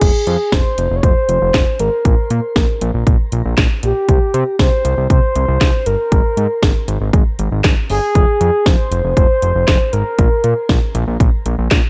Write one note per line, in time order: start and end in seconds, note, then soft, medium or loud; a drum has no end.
0.00 0.12 F1 loud
0.00 0.54 G#4 loud
0.00 kick loud
0.00 closed hi-hat medium
0.00 crash loud
0.27 0.37 F2 loud
0.27 closed hi-hat medium
0.52 0.62 F1 loud
0.52 0.96 C5 loud
0.52 kick loud
0.52 snare loud
0.52 closed hi-hat medium
0.78 0.88 F1 loud
0.78 closed hi-hat medium
0.91 1.01 F1 loud
0.96 1.05 C#5 medium
1.03 1.13 F1 loud
1.03 1.81 C5 loud
1.03 kick loud
1.03 closed hi-hat medium
1.29 1.39 F1 loud
1.29 closed hi-hat medium
1.42 1.51 F1 loud
1.54 1.64 F1 loud
1.54 kick loud
1.54 snare loud
1.54 clap loud
1.54 closed hi-hat medium
1.79 1.90 G#1 medium
1.79 2.81 A#4 loud
1.79 closed hi-hat medium
2.05 2.15 A#1 loud
2.05 kick loud
2.05 closed hi-hat medium
2.30 2.40 A#2 medium
2.30 closed hi-hat medium
2.56 2.66 A#1 loud
2.56 kick loud
2.56 snare loud
2.56 closed hi-hat medium
2.81 2.91 A#1 loud
2.81 closed hi-hat medium
2.94 3.04 A#1 loud
3.07 3.17 A#1 loud
3.07 kick loud
3.07 closed hi-hat medium
3.32 3.42 A#1 loud
3.32 closed hi-hat medium
3.45 3.55 A#1 loud
3.58 3.68 A#1 loud
3.58 kick loud
3.58 snare loud
3.58 clap loud
3.58 closed hi-hat medium
3.83 3.93 A#1 medium
3.83 4.56 G4 loud
3.83 closed hi-hat medium
4.08 4.18 C2 loud
4.08 kick loud
4.08 closed hi-hat medium
4.34 4.44 C3 loud
4.34 closed hi-hat medium
4.59 4.69 C2 loud
4.59 5.07 C5 loud
4.59 kick loud
4.59 snare loud
4.59 closed hi-hat medium
4.85 4.95 C2 loud
4.85 closed hi-hat medium
4.98 5.07 C2 loud
5.10 5.20 C2 loud
5.10 5.88 C5 loud
5.10 kick loud
5.10 closed hi-hat medium
5.36 5.46 C2 loud
5.36 closed hi-hat medium
5.48 5.58 C2 loud
5.61 5.71 C2 loud
5.61 kick loud
5.61 snare loud
5.61 clap loud
5.61 closed hi-hat medium
5.86 5.96 G1 medium
5.86 6.88 A#4 loud
5.86 closed hi-hat medium
6.12 6.22 G#1 loud
6.12 kick loud
6.12 closed hi-hat medium
6.37 6.47 G#2 loud
6.37 closed hi-hat medium
6.63 6.73 G#1 loud
6.63 kick loud
6.63 snare loud
6.63 closed hi-hat medium
6.88 6.98 G#1 loud
6.88 closed hi-hat medium
7.01 7.11 G#1 loud
7.13 7.23 G#1 loud
7.13 kick loud
7.13 closed hi-hat medium
7.39 7.49 G#1 loud
7.39 closed hi-hat medium
7.52 7.62 G#1 loud
7.64 7.74 G#1 loud
7.64 kick loud
7.64 snare loud
7.64 clap loud
7.64 closed hi-hat medium
7.90 8.00 G1 medium
7.90 8.67 G#4 loud
7.90 open hi-hat medium
8.15 8.25 F1 loud
8.15 kick loud
8.15 closed hi-hat medium
8.41 8.51 F2 loud
8.41 closed hi-hat medium
8.66 8.76 F1 loud
8.66 9.16 C5 loud
8.66 kick loud
8.66 snare loud
8.66 closed hi-hat medium
8.91 9.01 F1 loud
8.91 closed hi-hat medium
9.04 9.14 F1 loud
9.16 9.27 F1 loud
9.16 9.94 C5 loud
9.16 kick loud
9.16 closed hi-hat medium
9.42 9.52 F1 loud
9.42 closed hi-hat medium
9.55 9.65 F1 loud
9.68 9.78 F1 loud
9.68 kick loud
9.68 snare loud
9.68 clap loud
9.68 closed hi-hat medium
9.93 10.03 G#1 medium
9.93 10.95 A#4 loud
9.93 closed hi-hat medium
10.18 10.29 A#1 loud
10.18 kick loud
10.18 closed hi-hat medium
10.44 10.54 A#2 medium
10.44 closed hi-hat medium
10.69 10.79 A#1 loud
10.69 kick loud
10.69 snare loud
10.69 closed hi-hat medium
10.95 11.05 A#1 loud
10.95 closed hi-hat medium
11.07 11.17 A#1 loud
11.20 11.30 A#1 loud
11.20 kick loud
11.20 closed hi-hat medium
11.46 11.56 A#1 loud
11.46 closed hi-hat medium
11.58 11.68 A#1 loud
11.71 11.81 A#1 loud
11.71 kick loud
11.71 snare loud
11.71 clap loud
11.71 closed hi-hat medium